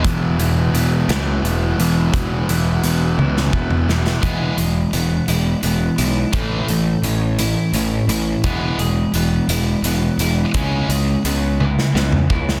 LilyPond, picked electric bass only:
\new Staff \with { instrumentName = "Picked electric bass" } { \clef bass \time 6/8 \key e \major \tempo 4. = 57 e,,8 e,,8 e,,8 cis,8 e,,8 e,,8 | e,,8 e,,8 e,,8 cis,8 e,,8 e,,8 | e,,8 e,,8 e,,8 e,,8 e,,8 b,,8 | a,,8 a,,8 a,,4 a,,8 a,,8 |
e,,8 e,,8 e,,8 e,,8 e,,8 e,,8 | cis,8 cis,8 cis,4 cis,8 cis,8 | }